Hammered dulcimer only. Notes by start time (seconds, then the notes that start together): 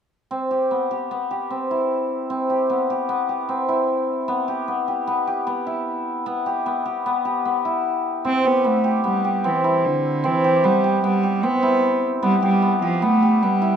0.31 C4
0.51 G4
0.71 B3
0.91 G4
1.11 B3
1.31 G4
1.50 C4
1.71 E4
2.30 C4
2.50 G4
2.70 B3
2.90 G4
3.09 B3
3.29 G4
3.49 C4
3.69 E4
4.28 B3
4.48 G4
4.68 B3
4.88 G4
5.07 B3
5.27 G4
5.47 B3
5.67 E4
6.26 B3
6.46 G4
6.66 B3
6.86 G4
7.06 B3
7.25 G4
7.45 B3
7.65 E4
8.25 C4
8.45 G4
8.64 B3
8.84 G4
9.04 B3
9.24 G4
9.44 C4
9.64 E4
10.24 C4
10.44 G4
10.64 B3
10.84 G4
11.04 B3
11.23 G4
11.43 C4
11.63 E4
12.23 B3
12.42 G4
12.62 B3
12.82 G4
13.02 B3
13.23 G4
13.43 B3
13.62 E4